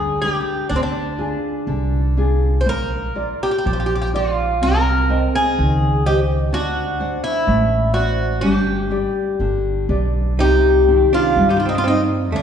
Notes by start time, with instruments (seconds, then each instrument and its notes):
Already playing: upright bass D2, nylon-string guitar D3, bouzouki G#4
0.22 nylon-string guitar D4 G4 B4, bouzouki G4
0.69 upright bass D2, nylon-string guitar D3, bouzouki D4
0.76 bouzouki C4
0.83 bouzouki D4
1.18 nylon-string guitar D4 F4 G#4
1.67 upright bass C2, nylon-string guitar D3
2.17 nylon-string guitar D4 F4 G#4
2.61 bouzouki C5
2.66 upright bass A#1, nylon-string guitar A#3, bouzouki A#4
3.15 nylon-string guitar F4 A#4 D5
3.43 bouzouki G4
3.51 bouzouki G4
3.58 bouzouki G4
3.65 upright bass A#1, nylon-string guitar F3, bouzouki G4
3.73 bouzouki G4
3.80 bouzouki G4
3.86 bouzouki G4
3.95 bouzouki G4
4.02 bouzouki G4
4.13 nylon-string guitar F4 A#4 D5, bouzouki F4
4.61 upright bass C2, nylon-string guitar C4, bouzouki A#4
5.09 nylon-string guitar C5 D#5 G5
5.35 bouzouki G#4
5.58 upright bass C#2, nylon-string guitar D#3
6.05 nylon-string guitar G4 C5 D#5, bouzouki G4
6.53 upright bass D2, nylon-string guitar D4, bouzouki F#4
7.00 nylon-string guitar C5 D5 F#5
7.24 bouzouki E4
7.47 upright bass A1, nylon-string guitar A3
7.93 bouzouki F#4, nylon-string guitar C5 D5 F#5
8.41 upright bass G1, nylon-string guitar G3, hollow-body jazz guitar D4, bouzouki G4
8.91 nylon-string guitar G4 B4 D5
9.40 upright bass G1, nylon-string guitar D3
9.89 upright bass B1, nylon-string guitar G4 B4 D5
10.38 upright bass C2, nylon-string guitar C3, hollow-body jazz guitar D#4, bouzouki G4
10.88 nylon-string guitar D#3 A#3 C4
11.13 hollow-body jazz guitar D4, bouzouki F4
11.36 upright bass G2, nylon-string guitar G3
11.49 hollow-body jazz guitar D#4, bouzouki G4
11.57 hollow-body jazz guitar D4, bouzouki F4
11.66 hollow-body jazz guitar C4, bouzouki D#4
11.75 hollow-body jazz guitar D4, bouzouki F4
11.84 nylon-string guitar A#3 C4 D#4, hollow-body jazz guitar C4, bouzouki D#4
12.32 upright bass D2, nylon-string guitar D3, hollow-body jazz guitar A3, bouzouki D4